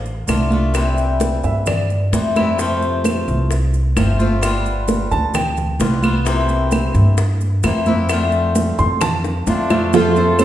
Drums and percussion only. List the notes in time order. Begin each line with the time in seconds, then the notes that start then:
0.04 high conga, maracas
0.28 high bongo, low bongo, high conga, claves, maracas
0.50 high conga, maracas
0.74 high bongo, high conga, claves, maracas
0.97 high conga, maracas
1.20 high bongo, high conga, maracas
1.44 high bongo, maracas
1.66 high bongo, high conga, low conga, claves, maracas
1.90 high bongo, high conga, maracas
2.13 high bongo, low bongo, high conga, maracas
2.36 high bongo, high conga, claves, maracas
2.59 high bongo, high conga, maracas
2.82 high conga, maracas
3.04 high bongo, high conga, claves, maracas
3.28 high conga, maracas
3.51 high bongo, high conga, maracas
3.74 high conga, maracas
3.97 high bongo, low bongo, high conga, claves, maracas
4.20 high conga, maracas
4.43 high bongo, high conga, claves, maracas
4.65 high conga, maracas
4.88 high bongo, high conga, maracas
5.11 high bongo, maracas
5.34 high bongo, high conga, low conga, claves, maracas
5.57 high bongo, high conga, low conga, maracas
5.80 high bongo, low bongo, high conga, maracas
6.03 high bongo, high conga, claves, maracas
6.26 high bongo, high conga, maracas
6.49 high conga, maracas
6.71 high bongo, high conga, claves, maracas
6.95 high conga, maracas
7.18 high bongo, high conga, maracas
7.41 high conga, maracas
7.63 high bongo, low bongo, high conga, claves, maracas
7.86 high conga, maracas
8.09 high bongo, high conga, claves, maracas
8.32 high conga, maracas
8.55 high bongo, high conga, maracas
8.78 high bongo, maracas
9.01 high bongo, high conga, low conga, claves, maracas
9.24 high bongo, high conga, maracas
9.47 low bongo, high conga, maracas
9.70 low bongo, high conga, claves, maracas
9.93 high bongo, high conga, maracas
10.16 high bongo, high conga, maracas
10.39 high bongo, high conga, claves, maracas